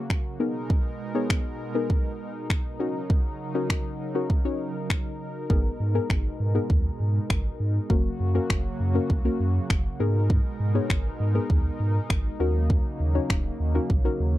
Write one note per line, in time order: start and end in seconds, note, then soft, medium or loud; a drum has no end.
0.00 0.38 C#3 medium
0.00 0.38 F#3 medium
0.00 0.15 A#3 medium
0.00 0.38 A#3 medium
0.00 0.16 C#4 medium
0.00 0.16 F#4 medium
0.00 0.38 F#4 medium
0.00 0.16 G#4 loud
0.10 finger snap loud
0.10 kick medium
0.40 2.78 B2 medium
0.40 2.78 G#3 medium
0.40 1.00 B3 medium
0.40 1.00 D#4 medium
0.40 7.86 D#4 medium
0.40 1.00 G#4 medium
0.40 2.78 A#4 medium
0.40 1.00 A#4 loud
0.70 kick loud
1.15 1.44 B3 medium
1.15 1.44 D#4 medium
1.15 1.44 G#4 medium
1.15 1.44 C#5 loud
1.30 finger snap loud
1.30 kick loud
1.75 2.33 B3 medium
1.75 2.33 D#4 medium
1.75 2.33 G#4 medium
1.75 2.33 A#4 loud
1.90 kick loud
2.50 finger snap medium
2.50 kick medium
2.80 5.47 C#3 medium
2.80 5.47 F#3 medium
2.80 3.40 C#4 medium
2.80 3.40 D#4 medium
2.80 3.40 F#4 medium
2.80 7.86 A#4 medium
2.80 3.40 A#4 loud
3.10 kick loud
3.55 3.84 C#4 medium
3.55 3.84 D#4 medium
3.55 3.84 F#4 medium
3.55 3.84 A#4 loud
3.70 finger snap loud
3.70 kick loud
4.15 4.29 C#4 medium
4.15 4.29 D#4 medium
4.15 4.29 F#4 medium
4.15 4.30 A#4 medium
4.30 kick loud
4.45 4.95 C#4 medium
4.45 4.96 D#4 medium
4.45 4.96 F#4 medium
4.45 4.96 C#5 loud
4.90 finger snap loud
4.90 kick medium
5.50 5.69 G#1 loud
5.50 7.88 B2 medium
5.50 7.88 G#3 medium
5.50 5.71 B3 medium
5.50 5.72 D#4 medium
5.50 5.72 G#4 medium
5.50 5.72 A#4 loud
5.50 kick loud
5.80 5.99 G#2 medium
5.95 6.24 B3 medium
5.95 6.24 D#4 medium
5.95 6.24 G#4 medium
5.95 6.24 A#4 loud
6.10 6.29 G#1 medium
6.10 finger snap loud
6.10 kick loud
6.40 6.59 G#2 loud
6.55 7.13 B3 medium
6.55 7.13 D#4 medium
6.55 7.13 G#4 medium
6.55 7.13 A#4 loud
6.70 6.89 D#2 loud
6.70 kick loud
7.00 7.19 G#2 loud
7.30 7.49 G#1 loud
7.30 finger snap loud
7.30 kick medium
7.60 7.79 G#2 medium
7.90 8.09 F#1 loud
7.90 9.98 C#3 medium
7.90 9.98 F#3 medium
7.90 8.11 A#3 medium
7.90 9.98 A#3 medium
7.90 8.12 C#4 medium
7.90 9.98 F#4 medium
7.90 8.12 F#4 medium
7.90 8.12 A#4 loud
7.90 kick loud
8.20 8.39 F#2 loud
8.35 8.64 A#3 medium
8.35 8.64 C#4 medium
8.35 8.64 F#4 medium
8.35 8.64 A#4 loud
8.50 8.69 F#1 loud
8.50 finger snap loud
8.50 kick loud
8.80 8.99 F#2 loud
8.95 9.09 A#3 medium
8.95 9.09 C#4 medium
8.95 9.09 F#4 medium
8.95 9.09 A#4 loud
9.10 9.29 C#2 medium
9.10 kick loud
9.25 9.75 A#3 medium
9.25 9.75 C#4 medium
9.25 9.76 F#4 medium
9.25 9.76 A#4 loud
9.40 9.59 F#2 loud
9.70 9.89 F#1 loud
9.70 finger snap medium
9.70 kick loud
10.00 10.39 G#2 loud
10.00 12.38 B2 medium
10.00 12.38 G#3 medium
10.00 10.60 B3 medium
10.00 10.60 D#4 medium
10.00 14.38 D#4 medium
10.00 10.60 G#4 medium
10.00 12.37 A#4 medium
10.00 10.60 A#4 loud
10.30 kick loud
10.60 10.79 G#2 loud
10.75 11.04 B3 medium
10.75 11.04 D#4 medium
10.75 11.04 G#4 medium
10.75 11.04 C#5 loud
10.90 11.09 G#1 loud
10.90 finger snap loud
10.90 kick loud
11.20 11.39 G#2 loud
11.35 11.93 B3 medium
11.35 11.93 D#4 medium
11.35 11.93 G#4 medium
11.35 11.93 A#4 loud
11.50 11.69 D#2 loud
11.50 kick loud
11.80 11.99 G#2 loud
12.10 12.29 G#1 loud
12.10 finger snap loud
12.10 kick medium
12.40 12.79 D#2 loud
12.40 14.38 C#3 medium
12.40 14.38 F#3 medium
12.40 14.38 A#3 medium
12.40 13.00 C#4 medium
12.40 13.00 D#4 medium
12.40 13.00 F#4 medium
12.40 13.00 A#4 loud
12.70 kick loud
13.00 13.19 D#2 loud
13.15 13.44 C#4 medium
13.15 13.44 D#4 medium
13.15 13.44 F#4 medium
13.15 13.44 C#5 loud
13.30 13.49 D#1 loud
13.30 finger snap loud
13.30 kick loud
13.60 13.79 D#2 loud
13.75 13.89 C#4 medium
13.75 13.89 D#4 medium
13.75 13.89 F#4 medium
13.75 13.89 A#4 loud
13.90 14.09 A#1 loud
13.90 kick loud
14.05 14.38 C#4 medium
14.05 14.38 D#4 medium
14.05 14.38 F#4 medium
14.05 14.38 A#4 loud
14.20 14.38 D#2 loud